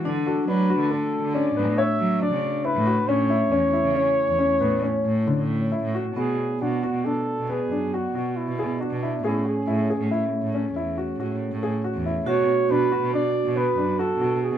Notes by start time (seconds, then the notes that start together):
Already playing: E4
0.05 D3 A3 D4 F#4
0.26 F#4 A4
0.48 F#3 D4 B4
0.70 F#4
0.81 D3
0.91 D4 A4
1.24 D3
1.35 C#4 D5
1.56 A2 B3
1.78 C#5 E5
2.00 F#3
2.21 D4 D5
2.32 C#3
2.65 E4 B4
2.76 A2
2.86 F#4
3.08 A2 C#4 E4 C#5
3.30 E4
3.51 E2 C#4
3.73 E4
3.84 C#3
3.95 C#4
4.28 E2
4.39 C#4
4.61 A2 B3
4.83 C#4
5.05 A2
5.27 D3
5.38 A2
5.72 E4
5.84 A2
5.95 F#4
6.16 B2 B3 F#4 G#4 D5
6.61 B2 D4 F#4
6.83 F#4
6.93 B2
7.05 D4 A4
7.39 B2
7.49 B3 G#4
7.71 F#2 D4
7.94 F#4
8.15 B2 F#4
8.37 E4
8.48 B2
8.59 G#4
8.80 D4 F#4
8.91 B2
9.03 E4
9.24 A2 A3 C#4 E4 G#4 C#5
9.46 G#4
9.67 A2 E4
9.90 G#4
10.00 A2
10.11 E4
10.43 A2
10.55 C#4
10.75 E2 E4
10.98 F#4
11.20 A2 F#4
11.52 A2
11.63 G#4
11.84 F#4
11.95 E2
12.06 E4
12.26 B2 B3 D4 F#4 C#5
12.70 B2 D4 B4
12.92 F#4
13.03 B2
13.14 D4 D5
13.45 B2
13.57 B3 B4
13.77 F#2 D4
13.99 F#4 A4
14.20 B2 F#4
14.43 G#4
14.52 B2